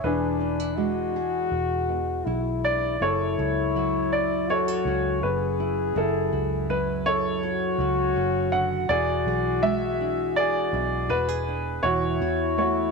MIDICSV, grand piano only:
0, 0, Header, 1, 2, 480
1, 0, Start_track
1, 0, Key_signature, 3, "minor"
1, 0, Tempo, 738007
1, 25, Time_signature, 4, 2, 24, 8
1, 8399, End_track
2, 0, Start_track
2, 0, Title_t, "Grand piano"
2, 0, Program_c, 0, 0
2, 25, Note_on_c, 0, 71, 69
2, 34, Note_on_c, 0, 62, 50
2, 36, Note_on_c, 0, 68, 53
2, 719, Note_off_c, 0, 71, 0
2, 964, Note_off_c, 0, 62, 0
2, 965, Note_off_c, 0, 68, 0
2, 1721, Note_on_c, 0, 74, 77
2, 1964, Note_on_c, 0, 73, 78
2, 1966, Note_off_c, 0, 74, 0
2, 1967, Note_on_c, 0, 69, 56
2, 2683, Note_on_c, 0, 74, 74
2, 2703, Note_off_c, 0, 73, 0
2, 2896, Note_off_c, 0, 69, 0
2, 2927, Note_off_c, 0, 74, 0
2, 2928, Note_on_c, 0, 73, 78
2, 2932, Note_on_c, 0, 69, 55
2, 3402, Note_on_c, 0, 71, 70
2, 3415, Note_off_c, 0, 73, 0
2, 3854, Note_off_c, 0, 69, 0
2, 3886, Note_on_c, 0, 69, 73
2, 3890, Note_off_c, 0, 71, 0
2, 3897, Note_on_c, 0, 64, 52
2, 4330, Note_off_c, 0, 69, 0
2, 4357, Note_on_c, 0, 71, 75
2, 4592, Note_on_c, 0, 73, 89
2, 4599, Note_off_c, 0, 71, 0
2, 4604, Note_on_c, 0, 69, 58
2, 4813, Note_off_c, 0, 64, 0
2, 5523, Note_off_c, 0, 69, 0
2, 5542, Note_on_c, 0, 78, 84
2, 5572, Note_off_c, 0, 73, 0
2, 5782, Note_on_c, 0, 74, 83
2, 5788, Note_off_c, 0, 78, 0
2, 5792, Note_on_c, 0, 68, 69
2, 6261, Note_on_c, 0, 76, 91
2, 6275, Note_off_c, 0, 74, 0
2, 6720, Note_off_c, 0, 68, 0
2, 6740, Note_on_c, 0, 74, 88
2, 6755, Note_off_c, 0, 76, 0
2, 6757, Note_on_c, 0, 68, 60
2, 7219, Note_on_c, 0, 71, 87
2, 7236, Note_off_c, 0, 74, 0
2, 7685, Note_off_c, 0, 68, 0
2, 7692, Note_on_c, 0, 73, 88
2, 7707, Note_on_c, 0, 66, 64
2, 7716, Note_off_c, 0, 71, 0
2, 8174, Note_off_c, 0, 73, 0
2, 8184, Note_on_c, 0, 73, 68
2, 8190, Note_off_c, 0, 66, 0
2, 8200, Note_on_c, 0, 66, 53
2, 8399, Note_off_c, 0, 66, 0
2, 8399, Note_off_c, 0, 73, 0
2, 8399, End_track
0, 0, End_of_file